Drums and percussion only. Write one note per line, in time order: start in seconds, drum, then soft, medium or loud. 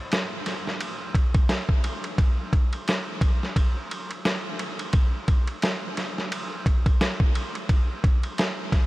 0.12 snare loud
0.12 hi-hat pedal soft
0.12 ride medium
0.46 snare soft
0.46 ride medium
0.67 snare soft
0.81 ride medium
1.15 kick medium
1.15 ride medium
1.34 kick loud
1.34 ride soft
1.49 snare loud
1.49 hi-hat pedal soft
1.49 ride medium
1.69 kick medium
1.84 ride medium
2.04 ride soft
2.18 kick loud
2.18 ride medium
2.53 kick medium
2.53 ride medium
2.73 ride soft
2.88 snare loud
2.88 hi-hat pedal soft
2.88 ride medium
3.21 kick loud
3.21 ride medium
3.43 snare soft
3.56 kick medium
3.56 ride medium
3.91 ride medium
4.11 ride soft
4.25 snare loud
4.25 hi-hat pedal soft
4.25 ride medium
4.59 ride medium
4.79 ride soft
4.93 kick loud
4.93 ride medium
5.28 kick medium
5.28 ride soft
5.47 ride soft
5.62 snare loud
5.62 hi-hat pedal medium
5.62 ride medium
5.97 snare soft
5.97 ride medium
6.18 snare soft
6.32 ride medium
6.66 kick medium
6.66 ride medium
6.86 kick loud
6.86 ride soft
7.01 snare loud
7.01 hi-hat pedal soft
7.01 ride medium
7.20 kick medium
7.35 ride medium
7.55 ride soft
7.69 kick loud
7.69 ride medium
8.04 kick medium
8.04 ride medium
8.23 ride soft
8.38 snare loud
8.38 hi-hat pedal soft
8.38 ride medium
8.72 kick loud
8.72 snare soft
8.72 ride medium